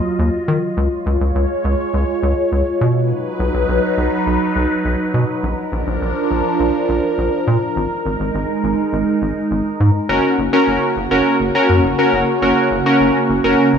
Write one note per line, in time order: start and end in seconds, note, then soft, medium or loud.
0.00 0.75 F#3 medium
0.00 2.77 F4 medium
0.00 0.75 D#5 medium
0.19 0.30 D#2 medium
0.48 0.59 D#3 loud
0.77 0.88 C#2 loud
0.77 2.79 G#3 medium
0.77 2.79 C#5 medium
1.06 1.17 C#2 loud
1.21 1.31 C#2 loud
1.35 1.46 C#2 loud
1.65 1.75 C#2 loud
1.94 2.04 C#2 loud
2.23 2.33 C#2 loud
2.52 2.63 C#2 medium
2.81 3.13 B2 loud
2.81 5.41 F#3 medium
2.81 5.41 D#4 medium
2.81 5.41 B4 medium
3.40 3.50 B1 loud
3.54 3.65 B1 loud
3.69 3.79 B1 loud
3.98 4.08 B1 loud
4.27 4.37 B1 loud
4.56 4.66 B1 loud
4.85 4.96 B1 loud
5.14 5.25 B2 loud
5.43 5.54 A#1 loud
5.43 7.74 F3 medium
5.43 7.74 D4 medium
5.43 10.05 A#4 medium
5.72 5.83 A#1 loud
5.87 5.98 A#1 loud
6.02 6.12 A#1 loud
6.31 6.41 A#1 medium
6.60 6.70 A#1 loud
6.89 7.00 A#1 loud
7.18 7.29 A#1 loud
7.47 7.58 A#2 loud
7.76 7.87 G#1 loud
7.76 10.07 G#3 medium
7.76 10.07 D#4 medium
8.06 8.16 G#1 loud
8.20 8.31 G#1 medium
8.35 8.45 G#1 loud
8.64 8.74 G#1 loud
8.93 9.03 G#1 loud
9.22 9.32 G#1 loud
9.51 9.62 G#1 loud
9.80 9.91 G#2 loud
10.09 10.20 F#1 loud
10.09 13.79 C#3 medium
10.09 13.79 A#3 medium
10.09 10.34 C#4 medium
10.09 10.34 F#4 medium
10.09 13.79 F#4 medium
10.09 10.34 A#4 medium
10.38 10.49 F#1 loud
10.53 10.85 C#4 medium
10.53 10.85 F#4 medium
10.53 10.85 A#4 loud
10.68 10.78 F#1 loud
10.97 11.07 F#1 loud
11.11 11.22 F#1 loud
11.11 11.35 C#4 medium
11.11 11.35 F#4 medium
11.11 11.35 A#4 medium
11.40 11.51 F#1 medium
11.55 11.79 C#4 medium
11.55 11.79 F#4 medium
11.55 11.79 A#4 medium
11.69 11.80 F#2 medium
11.84 11.95 F#1 loud
11.99 12.23 C#4 medium
11.99 12.23 F#4 medium
11.99 12.23 A#4 medium
12.13 12.24 F#1 loud
12.42 12.53 F#1 loud
12.42 12.67 C#4 medium
12.42 12.67 F#4 medium
12.42 12.67 A#4 medium
12.71 12.82 F#1 loud
12.86 13.18 C#4 medium
12.86 13.18 F#4 medium
12.86 13.18 A#4 medium
13.00 13.11 F#1 medium
13.30 13.40 F#1 loud
13.44 13.55 F#1 medium
13.44 13.68 C#4 medium
13.44 13.69 F#4 medium
13.44 13.69 A#4 medium
13.73 13.79 F#1 medium